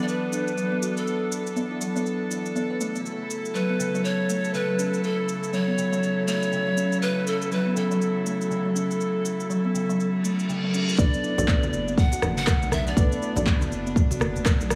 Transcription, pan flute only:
0.02 D5
0.08 B4
0.97 A4
3.54 B4
4.04 C#5
4.54 B4
5.03 A4
5.53 C#5
6.27 C#5
7.02 B4
7.27 A4
7.52 B4
7.77 A4
10.99 D5
11.98 F#5
12.37 F#5
12.72 E5
12.87 D5

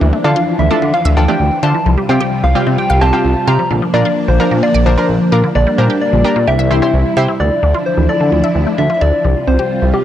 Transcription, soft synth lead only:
0.24 F5
0.59 E5
0.94 F5
1.17 G5
1.63 A5
2.09 G5
2.44 F5
2.78 G5
3.01 A5
3.48 A#5
3.94 D5
4.28 C5
4.63 D5
4.86 C5
5.32 A#4
5.55 D5
5.78 C5
6.01 D5
6.48 E5
7.40 D5
7.86 C5
8.09 D5
8.78 E5
8.94 E5
9.01 D5
9.47 C5
9.94 G4

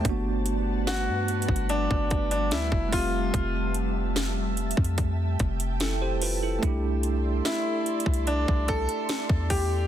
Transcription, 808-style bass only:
0.05 G1
1.08 G2
1.49 G1
1.91 G1
2.52 D2
2.72 F1
3.34 F1
4.78 F2
5.40 F1
6.63 C2
8.06 C2
8.48 C2
9.30 E2

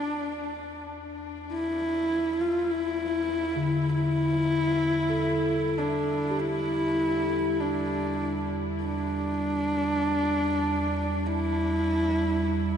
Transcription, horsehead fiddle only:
Already playing: D4
1.53 E4
2.41 F4
2.71 E4
3.94 E4
5.78 D4
6.40 E4
7.60 D4
8.84 D4
11.27 E4

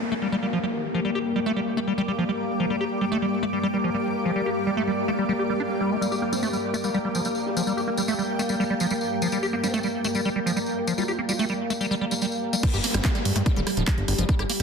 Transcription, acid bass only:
0.12 A3
0.22 G3
0.32 G3
0.43 G3
0.53 F3
0.63 G3
0.94 F3
1.05 G3
1.15 G4
1.36 G3
1.46 A3
1.56 G3
1.77 A3
1.87 G3
1.98 G3
2.08 G3
2.18 F3
2.29 G3
2.60 F3
2.70 G3
2.81 G4
3.01 G3
3.12 A3
3.22 G3
3.43 A3
3.53 G3
3.63 G3
3.74 G3
3.84 F3
3.94 G3
4.25 F3
4.36 G3
4.46 G4
4.67 G3
4.77 A3
4.87 G3
5.08 A3
5.19 G3
5.29 G3
5.39 G4
5.50 G3
5.60 D4
5.81 G3
5.91 A3
6.01 G3
6.12 G4
6.22 A#3
6.32 G3
6.43 A3
6.53 G3
6.74 A3
6.84 G3
6.94 G3
7.05 G3
7.15 F3
7.25 G3
7.56 F3
7.67 G3
7.77 G4
7.88 A#3
7.98 G3
8.08 A3
8.19 G3
8.39 A3
8.50 G3
8.60 G3
8.70 G3
8.81 F3
8.91 G3
9.22 F3
9.32 G3
9.43 G4
9.53 A#3
9.63 G3
9.74 A3
9.84 G3
10.05 A3
10.15 G3
10.25 G3
10.36 G3
10.46 F3
10.56 G3
10.87 F3
10.98 G3
11.08 G4
11.19 A#3
11.29 G3
11.39 A3
11.50 G3
11.70 A3
11.81 G3
11.91 G3
12.01 G3
12.12 G3
12.22 G3
12.53 G3
12.63 G3
12.74 G4
12.84 A#3
12.94 G3
13.05 A3
13.15 G3
13.36 A3
13.46 G3
13.56 G3
13.67 G3
13.77 F3
13.87 G3
14.18 F3
14.29 G3
14.39 G4
14.50 A#3

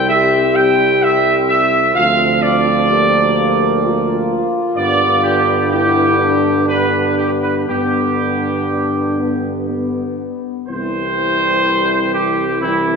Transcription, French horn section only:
0.10 G4
1.95 F4
2.88 G4
3.83 F4
5.72 E4
6.19 D4
6.68 D4
7.70 B3
8.70 D4
9.19 B3
9.69 B3
10.70 C4 E4
12.62 C4 E4

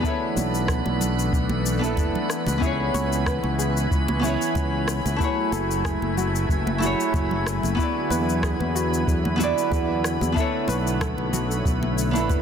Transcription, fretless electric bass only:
0.37 B1
0.87 B1
1.33 B1
1.97 F#1
2.47 C#2
2.94 C#2
3.44 C#2
3.91 C#2
4.55 C#2
5.05 C#2
5.52 F#1
6.02 F#1
6.49 F#1
7.14 F#1
7.64 F#1
8.10 E2
8.60 E2
9.07 E2
9.72 E2
10.21 E2
10.68 B1
11.18 B1
11.65 B1
12.30 F#1

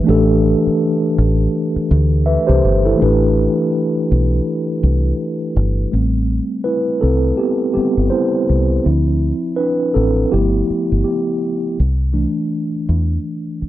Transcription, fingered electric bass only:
0.09 A1
0.67 muted fingered electric bass stroke
1.18 A1
1.76 muted fingered electric bass stroke
1.91 D2
2.49 C2
2.64 G1
3.02 A1
4.12 B1
4.83 C2
5.56 G1
5.93 A1
7.03 C2
7.76 muted fingered electric bass stroke
7.97 G1
8.49 C2
8.86 D2
9.96 A1
10.33 G1
10.70 muted fingered electric bass stroke
10.92 G1
11.80 C2
12.89 E2
13.62 muted fingered electric bass stroke

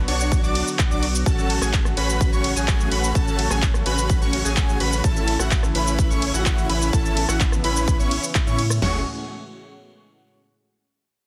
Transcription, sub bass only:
0.08 B1
0.44 B1
0.91 B1
1.26 A1
1.62 A1
1.97 A1
2.33 A1
2.56 A1
2.92 A1
3.15 A1
3.51 A1
3.86 A1
4.22 A1
4.45 A1
4.81 A1
5.04 A1
5.40 A1
5.75 A1
6.10 A1
6.34 A1
6.70 A1
6.93 A1
7.29 A1
7.64 A1
8.00 A1
8.47 A2
8.82 F#1

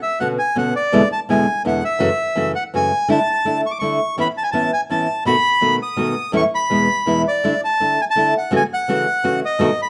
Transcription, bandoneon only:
0.03 E5
0.20 F#5
0.39 G#5
0.58 F#5
0.76 D5
1.12 A5
1.30 G#5
1.67 F#5
1.85 E5
2.56 F#5
2.76 G#5
3.11 A5
3.66 C#6
3.71 D6
3.79 C#6
4.20 B5
4.38 A5
4.43 G#5
4.52 A5
4.73 G#5
4.91 A5
5.27 B5
5.83 D#6
6.36 C#6
6.55 B5
7.28 D5
7.65 A5
8.01 G#5
8.10 A5
8.38 F#5
8.56 G#5
8.73 F#5
9.45 D#5
9.82 B5

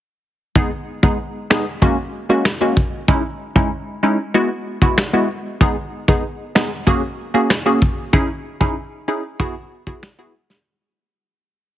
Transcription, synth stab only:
0.55 G#3 B3 D#4 G#4
1.03 G#3 B3 D#4 G#4
1.50 G#3 B3 D#4 G#4
1.82 G#3 A#3 C#4 F#4
2.29 G#3 A#3 C#4 F#4
2.61 G#3 A#3 C#4 F#4
3.08 G#3 C#4 D#4 E4
3.56 G#3 C#4 D#4 E4
4.03 G#3 C#4 D#4 E4
4.34 G#3 B3 E4 F#4
4.82 G#3 B3 E4 F#4
5.13 G#3 B3 E4 F#4
5.61 G#3 B3 D#4 G#4
6.08 G#3 B3 D#4 G#4
6.55 G#3 B3 D#4 G#4
6.87 A#3 C#4 F#4 G#4
7.34 A#3 C#4 F#4 G#4
7.66 A#3 C#4 F#4 G#4
8.13 C#4 D#4 E4 G#4
8.61 C#4 D#4 E4 G#4
9.08 C#4 D#4 E4 G#4
9.40 B3 E4 F#4 G#4
9.87 B3 E4 F#4 G#4
10.19 B3 E4 F#4 G#4

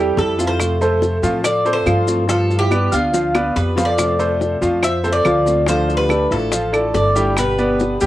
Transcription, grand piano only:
Already playing: G3 G4 A4
0.38 F4 F5
0.81 A3 A4 C5
1.23 F3 F4 F5
1.65 A3 A4 C5
1.86 F3 F4 F5
2.29 F3 F4 F5
2.71 B3 B4 D5
3.13 F3 F4 F5
3.35 B3 B4 D5
3.77 F3 F4 F5
4.19 A3 A4 C5
4.61 F3 F4 F5
5.04 A3 A4 C5
5.25 F3 F4 F5
5.67 F3 F5
6.10 A3 A4 D5
6.52 F3 F4 F5
6.73 A3 A4 D5
7.15 G3 G4 G5
7.58 B3 B4 D5
8.01 G3 G4 G5

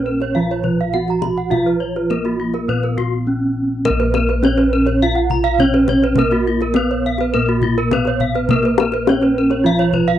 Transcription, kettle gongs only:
Already playing: A#4
0.36 F3
0.95 B3
1.53 F4
2.10 B3
2.68 A#2
3.27 B3
3.85 A#4
3.90 A#1
4.43 B3
5.60 B3
6.18 A#4
6.76 B3
7.35 A#2
7.93 B3
8.51 A#4
9.09 B3
9.66 F3

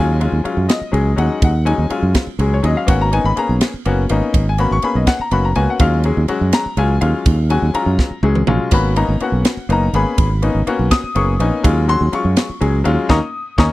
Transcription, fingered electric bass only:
Already playing: D#2
0.32 D#2
0.45 muted fingered electric bass stroke
0.57 F#2
0.81 muted fingered electric bass stroke
0.93 C#2
1.18 D#2
1.42 D#2
1.78 D#2
1.90 muted fingered electric bass stroke
2.02 F#2
2.27 muted fingered electric bass stroke
2.39 C#2
2.64 D#2
2.88 G#1
3.24 G#1
3.37 muted fingered electric bass stroke
3.49 B1
3.74 muted fingered electric bass stroke
3.86 F#1
4.10 G#1
4.34 G#1
4.71 G#1
4.83 muted fingered electric bass stroke
4.95 B1
5.19 muted fingered electric bass stroke
5.32 F#1
5.56 C#2
5.80 D#2
6.17 D#2
6.29 muted fingered electric bass stroke
6.41 F#2
6.66 muted fingered electric bass stroke
6.77 C#2
7.02 D#2
7.26 D#2
7.62 D#2
7.74 muted fingered electric bass stroke
7.86 F#2
8.11 muted fingered electric bass stroke
8.23 C#2
8.47 A#1
8.72 G#1
9.08 G#1
9.21 muted fingered electric bass stroke
9.32 B1
9.57 muted fingered electric bass stroke
9.69 F#1
9.93 G#1
10.18 G#1
10.55 G#1
10.67 muted fingered electric bass stroke
10.79 B1
11.04 muted fingered electric bass stroke
11.16 F#1
11.39 A#1
11.64 D#2
12.01 D#2
12.13 muted fingered electric bass stroke
12.25 F#2
12.50 muted fingered electric bass stroke
12.61 C#2
12.86 D#2
13.10 D#2
13.58 D#2

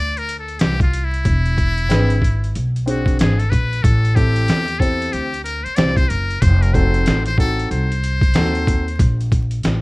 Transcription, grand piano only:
1.89 C4 D4 G#4 B4
2.86 C4 D4 G#4 C5
4.15 C4 E4 G4 A4
4.80 C4 E4 G4 C5
5.77 C4 E4 G4 C5
6.73 C4 D#4 F#4 A4
7.38 C4 D#4 F#4 A4
8.35 C4 D#4 F#4 A4

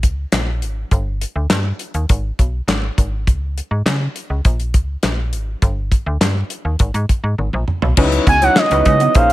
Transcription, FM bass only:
0.03 C#2
0.33 A#1
0.62 G#1
0.91 G1
1.36 D2
1.50 G2
1.94 D#2
2.10 G#1
2.39 B1
2.68 G#1
2.98 G#1
3.28 C#2
3.71 G#2
3.86 C#3
4.30 C#2
4.45 A#1
4.74 C#2
5.03 A#1
5.33 G#1
5.62 G1
6.06 D2
6.21 G2
6.65 D#2
6.80 G#1
6.94 G#2
7.24 G#2
7.38 G#1
7.54 A#1
7.83 B1
7.97 C#2
8.27 C#2
8.71 C#2
8.86 C#3
9.15 A#1

